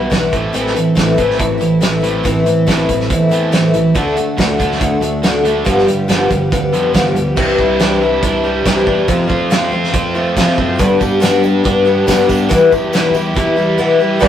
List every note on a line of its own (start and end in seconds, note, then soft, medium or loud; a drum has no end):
0.00 0.29 B1 medium
0.00 0.10 E3 medium
0.00 0.10 G3 soft
0.00 0.11 B3 medium
0.00 0.11 E4 medium
0.10 0.32 E2 medium
0.10 0.32 B2 medium
0.10 0.33 E3 medium
0.10 0.33 G3 medium
0.10 0.33 B3 medium
0.10 0.30 E4 medium
0.10 kick medium
0.10 snare loud
0.10 closed hi-hat medium
0.31 0.53 A1 medium
0.31 0.52 A2 medium
0.31 0.52 E3 medium
0.31 0.53 A3 soft
0.31 0.53 C4 soft
0.31 0.53 E4 soft
0.31 kick medium
0.31 closed hi-hat medium
0.53 0.74 A1 medium
0.53 0.75 A2 medium
0.53 0.75 E3 medium
0.53 0.75 A3 medium
0.53 0.74 C4 medium
0.53 0.72 E4 medium
0.53 closed hi-hat medium
0.67 snare soft
0.73 0.94 A2 medium
0.73 0.95 E3 medium
0.73 0.95 A3 soft
0.73 0.95 C4 soft
0.73 0.95 E4 medium
0.73 closed hi-hat medium
0.95 1.17 A1 medium
0.95 1.17 A2 medium
0.95 1.17 E3 medium
0.95 1.18 A3 medium
0.95 1.17 C4 medium
0.95 1.15 E4 medium
0.95 kick medium
0.95 snare loud
0.95 closed hi-hat medium
1.16 1.38 A1 medium
1.16 1.38 A2 medium
1.16 1.38 E3 medium
1.16 1.37 A3 soft
1.16 1.38 C4 soft
1.16 1.38 E4 medium
1.16 kick medium
1.16 closed hi-hat medium
1.30 snare soft
1.37 1.59 A1 loud
1.37 1.59 A2 medium
1.37 1.60 E3 medium
1.37 1.60 A3 medium
1.37 1.58 C4 medium
1.37 1.57 E4 medium
1.37 kick loud
1.37 closed hi-hat medium
1.58 2.21 A1 medium
1.58 1.80 A2 medium
1.58 1.80 E3 medium
1.58 1.80 A3 soft
1.58 1.81 C4 medium
1.58 1.81 E4 medium
1.58 closed hi-hat medium
1.80 2.02 A2 medium
1.80 2.03 E3 medium
1.80 2.02 A3 medium
1.80 2.01 C4 medium
1.80 2.00 E4 medium
1.80 snare loud
1.80 closed hi-hat medium
2.01 2.23 A2 medium
2.01 2.23 E3 loud
2.01 2.23 A3 soft
2.01 2.24 C4 soft
2.01 2.23 E4 medium
2.01 closed hi-hat medium
2.23 2.45 A1 medium
2.23 2.45 A2 medium
2.23 2.46 E3 medium
2.23 2.46 A3 medium
2.23 2.44 C4 medium
2.23 2.43 E4 medium
2.23 kick loud
2.23 closed hi-hat medium
2.44 2.65 A2 medium
2.44 2.66 A2 medium
2.44 2.65 E3 medium
2.44 2.66 A3 soft
2.44 2.66 C4 medium
2.44 2.66 E4 soft
2.44 closed hi-hat medium
2.66 2.87 A1 medium
2.66 2.88 A2 medium
2.66 2.88 E3 medium
2.66 2.88 A3 medium
2.66 2.87 C4 medium
2.66 2.86 E4 medium
2.66 kick medium
2.66 snare loud
2.66 closed hi-hat medium
2.87 3.09 A1 medium
2.87 3.08 A2 medium
2.87 3.08 E3 medium
2.87 3.08 A3 soft
2.87 3.09 C4 medium
2.87 3.09 E4 medium
2.87 kick medium
2.87 closed hi-hat medium
3.00 snare soft
3.09 3.70 E2 medium
3.09 3.29 A2 medium
3.09 3.31 E3 medium
3.09 3.30 A3 medium
3.09 3.29 C4 medium
3.09 3.28 E4 medium
3.09 kick loud
3.09 closed hi-hat medium
3.29 3.51 A2 medium
3.29 3.51 E3 medium
3.29 3.52 A3 soft
3.29 3.52 C4 medium
3.29 3.51 E4 medium
3.29 closed hi-hat medium
3.52 3.73 A2 medium
3.52 3.74 E3 medium
3.52 3.74 A3 medium
3.52 3.73 C4 medium
3.52 3.71 E4 medium
3.52 snare loud
3.52 closed hi-hat medium
3.73 3.94 A1 medium
3.73 3.93 A2 medium
3.73 3.93 E3 medium
3.73 3.94 A3 soft
3.73 3.95 C4 medium
3.73 3.95 E4 medium
3.73 closed hi-hat medium
3.94 4.15 D2 medium
3.94 4.16 D3 medium
3.94 4.16 A3 medium
3.94 4.16 D4 medium
3.94 4.14 F#4 medium
3.94 kick loud
3.94 closed hi-hat medium
4.16 4.35 D3 medium
4.16 4.37 A3 soft
4.16 4.38 D4 soft
4.16 4.37 F#4 medium
4.16 closed hi-hat medium
4.37 4.58 D2 medium
4.37 4.59 D3 medium
4.37 4.59 A3 medium
4.37 4.59 D4 medium
4.37 4.58 F#4 medium
4.37 kick medium
4.37 snare loud
4.37 closed hi-hat medium
4.59 4.79 D2 medium
4.59 4.79 D3 medium
4.59 4.80 A3 soft
4.59 4.80 D4 soft
4.59 4.80 F#4 medium
4.59 kick medium
4.59 closed hi-hat medium
4.72 snare soft
4.80 5.00 D2 loud
4.80 5.02 D3 medium
4.80 5.02 A3 medium
4.80 5.02 D4 medium
4.80 5.00 F#4 medium
4.80 kick loud
4.80 closed hi-hat medium
5.01 5.61 D2 medium
5.01 5.21 D3 medium
5.01 5.22 A3 soft
5.01 5.23 D4 soft
5.01 5.23 F#4 medium
5.01 closed hi-hat medium
5.23 5.44 D3 medium
5.23 5.45 A3 medium
5.23 5.44 D4 medium
5.23 5.43 F#4 medium
5.23 snare loud
5.23 closed hi-hat medium
5.44 5.64 D3 medium
5.44 5.65 A3 soft
5.44 5.66 D4 soft
5.44 5.66 F#4 medium
5.44 closed hi-hat medium
5.65 5.86 G1 medium
5.65 5.87 G2 medium
5.65 5.87 D3 medium
5.65 5.87 F3 medium
5.65 5.87 G3 medium
5.65 5.86 B3 medium
5.65 5.85 G4 medium
5.65 kick loud
5.65 closed hi-hat medium
5.78 snare soft
5.87 6.07 G2 medium
5.87 6.06 G2 medium
5.87 6.07 D3 medium
5.87 6.07 F3 soft
5.87 6.07 G3 soft
5.87 6.08 B3 medium
5.87 6.08 G4 medium
5.87 closed hi-hat medium
6.08 6.29 G1 medium
6.08 6.30 G2 medium
6.08 6.30 D3 medium
6.08 6.30 F3 medium
6.08 6.30 G3 medium
6.08 6.29 B3 medium
6.08 6.28 G4 medium
6.08 snare loud
6.08 closed hi-hat medium
6.29 6.50 G1 medium
6.29 6.49 G2 medium
6.29 6.49 D3 medium
6.29 6.50 F3 soft
6.29 6.51 G3 soft
6.29 6.51 B3 soft
6.29 6.51 G4 medium
6.29 kick medium
6.29 closed hi-hat medium
6.51 6.72 D2 medium
6.51 6.71 G2 medium
6.51 6.71 D3 medium
6.51 6.72 F3 medium
6.51 6.72 G3 medium
6.51 6.72 B3 medium
6.51 6.71 G4 medium
6.51 kick loud
6.51 closed hi-hat medium
6.72 6.92 F2 medium
6.72 6.93 G2 medium
6.72 6.93 D3 medium
6.72 6.93 F3 soft
6.72 6.94 G3 soft
6.72 6.94 B3 medium
6.72 6.94 G4 medium
6.72 closed hi-hat medium
6.93 7.14 E2 medium
6.93 7.15 G2 medium
6.93 7.15 D3 medium
6.93 7.16 F3 medium
6.93 7.16 G3 medium
6.93 7.15 B3 medium
6.93 7.14 G4 medium
6.93 kick medium
6.93 snare loud
6.93 closed hi-hat medium
7.15 7.35 D2 medium
7.15 7.35 G2 medium
7.15 7.35 D3 medium
7.15 7.36 F3 soft
7.15 7.36 G3 soft
7.15 7.37 B3 medium
7.15 7.37 G4 soft
7.15 closed hi-hat medium
7.36 7.57 C2 medium
7.36 7.58 C3 medium
7.36 7.58 E3 medium
7.36 7.58 G3 medium
7.36 7.59 D4 medium
7.36 7.58 G4 medium
7.36 kick loud
7.36 crash loud
7.59 8.19 C2 medium
7.59 7.79 G3 soft
7.59 7.80 D4 medium
7.59 7.99 E4 medium
7.59 7.80 G4 medium
7.59 kick medium
7.79 8.01 C3 medium
7.79 8.01 E3 medium
7.79 8.02 G3 medium
7.79 8.02 D4 medium
7.79 8.01 G4 medium
7.79 snare loud
7.79 closed hi-hat medium
8.01 8.22 G3 soft
8.01 8.23 D4 medium
8.01 9.08 E4 medium
8.01 8.23 G4 medium
8.22 8.62 C2 medium
8.22 8.44 E3 medium
8.22 8.44 G3 medium
8.22 8.44 D4 medium
8.22 8.43 G4 medium
8.22 kick loud
8.22 closed hi-hat medium
8.44 8.65 G3 soft
8.44 8.65 D4 soft
8.44 8.65 G4 medium
8.65 8.85 C2 loud
8.65 8.87 C3 medium
8.65 8.87 E3 medium
8.65 8.87 G3 medium
8.65 8.86 D4 medium
8.65 8.85 G4 medium
8.65 kick medium
8.65 snare loud
8.65 closed hi-hat medium
8.86 9.07 E2 medium
8.86 9.09 G3 soft
8.86 9.08 D4 soft
8.86 9.08 G4 medium
8.86 kick medium
9.08 9.29 F2 medium
9.08 9.28 F2 medium
9.08 9.29 C3 medium
9.08 9.29 F3 medium
9.08 9.28 A3 medium
9.08 9.28 C4 medium
9.08 9.26 F4 loud
9.08 kick loud
9.08 closed hi-hat medium
9.28 9.69 F2 medium
9.28 9.50 F3 soft
9.28 9.50 A3 medium
9.28 9.50 C4 medium
9.28 9.50 F4 medium
9.28 kick medium
9.50 9.72 F2 medium
9.50 9.72 C3 medium
9.50 9.72 F3 medium
9.50 9.72 A3 medium
9.50 9.71 C4 medium
9.50 9.71 F4 loud
9.50 snare loud
9.50 closed hi-hat medium
9.71 9.92 F2 medium
9.71 9.93 F3 soft
9.71 9.93 A3 soft
9.71 9.94 C4 medium
9.71 9.93 F4 medium
9.84 snare soft
9.94 10.33 F2 medium
9.94 10.15 F3 medium
9.94 10.15 A3 medium
9.94 10.14 C4 medium
9.94 10.13 F4 medium
9.94 kick loud
9.94 closed hi-hat medium
10.15 10.36 F3 soft
10.15 10.36 A3 soft
10.15 10.36 C4 medium
10.15 10.36 F4 medium
10.36 10.58 F2 medium
10.36 10.58 C3 medium
10.36 10.47 F3 medium
10.36 10.58 F3 medium
10.36 10.57 A3 medium
10.36 10.56 C4 loud
10.36 10.55 F4 medium
10.36 kick medium
10.36 snare loud
10.36 closed hi-hat medium
10.48 snare soft
10.56 10.78 F#2 medium
10.56 10.79 F3 soft
10.56 10.79 A3 medium
10.56 10.79 C4 medium
10.56 10.78 F4 medium
10.56 kick medium
10.78 11.00 G2 medium
10.78 10.99 G2 medium
10.78 11.00 D3 medium
10.78 11.00 G3 medium
10.78 11.00 B3 medium
10.78 10.99 D4 medium
10.78 10.99 G4 medium
10.78 kick loud
10.78 closed hi-hat medium
10.78 tambourine medium
11.00 11.61 G2 medium
11.00 11.19 G3 medium
11.00 11.20 B3 medium
11.00 11.20 D4 medium
11.00 11.20 G4 medium
11.00 kick medium
11.00 tambourine medium
11.20 11.42 G2 medium
11.20 11.42 D3 medium
11.20 11.43 G3 medium
11.20 11.42 B3 medium
11.20 11.42 D4 medium
11.20 11.41 G4 medium
11.20 snare loud
11.20 closed hi-hat medium
11.20 tambourine medium
11.42 11.63 G3 soft
11.42 11.64 B3 medium
11.42 11.64 D4 medium
11.42 11.64 G4 medium
11.42 tambourine medium
11.64 12.05 G2 medium
11.64 11.86 G3 medium
11.64 11.85 B3 medium
11.64 11.84 D4 medium
11.64 11.84 G4 medium
11.64 kick loud
11.64 closed hi-hat medium
11.64 tambourine soft
11.85 12.07 G3 medium
11.85 12.07 B3 medium
11.85 12.07 D4 medium
11.85 12.07 G4 medium
11.85 tambourine soft
12.07 12.28 G2 medium
12.07 12.27 G2 loud
12.07 12.29 D3 medium
12.07 12.29 G3 medium
12.07 12.28 B3 medium
12.07 12.28 D4 medium
12.07 12.27 G4 loud
12.07 kick medium
12.07 snare loud
12.07 closed hi-hat medium
12.07 tambourine medium
12.20 snare soft
12.28 12.49 G2 medium
12.28 12.49 G3 soft
12.28 12.50 B3 medium
12.28 12.50 D4 medium
12.28 12.49 G4 medium
12.28 kick medium
12.28 tambourine medium
12.49 12.71 E2 medium
12.49 12.70 E2 loud
12.49 12.71 B2 medium
12.49 12.71 E3 loud
12.49 12.71 G3 loud
12.49 12.70 E4 loud
12.49 12.69 G4 loud
12.49 kick loud
12.49 closed hi-hat medium
12.49 tambourine medium
12.70 13.12 E2 loud
12.70 12.93 E3 soft
12.70 12.93 G3 soft
12.70 12.93 E4 medium
12.70 12.92 G4 medium
12.70 kick medium
12.70 tambourine medium
12.93 13.14 E2 medium
12.93 13.15 B2 medium
12.93 13.15 E3 medium
12.93 13.14 G3 medium
12.93 13.13 E4 loud
12.93 13.12 G4 loud
12.93 snare loud
12.93 closed hi-hat medium
12.93 tambourine medium
13.14 13.34 E2 medium
13.14 13.33 E3 soft
13.14 13.34 G3 medium
13.14 13.35 E4 medium
13.14 13.35 G4 medium
13.14 tambourine medium
13.34 13.76 E2 loud
13.34 13.56 E3 medium
13.34 13.56 G3 medium
13.34 13.55 E4 medium
13.34 13.54 G4 medium
13.34 kick loud
13.34 closed hi-hat medium
13.34 tambourine soft
13.56 13.77 E3 medium
13.56 13.77 G3 medium
13.56 13.78 E4 medium
13.56 13.78 G4 medium
13.56 tambourine soft
13.78 13.99 E2 medium
13.78 14.00 B2 medium
13.78 14.00 E3 medium
13.78 14.00 G3 loud
13.78 13.99 E4 loud
13.78 13.99 G4 loud
14.00 14.20 E3 soft
14.00 14.19 G3 medium
14.00 14.21 E4 medium
14.00 14.20 G4 medium
14.19 14.28 G2 medium
14.19 14.28 G2 loud
14.19 14.28 D3 medium
14.19 14.28 G3 medium
14.19 14.28 B3 medium
14.19 14.28 D4 loud
14.19 14.28 D4 medium
14.19 14.28 G4 loud
14.19 14.28 G4 medium
14.19 14.28 B4 medium
14.19 14.28 D5 loud
14.19 14.28 D5 medium
14.19 14.28 G5 loud
14.19 kick loud
14.19 crash loud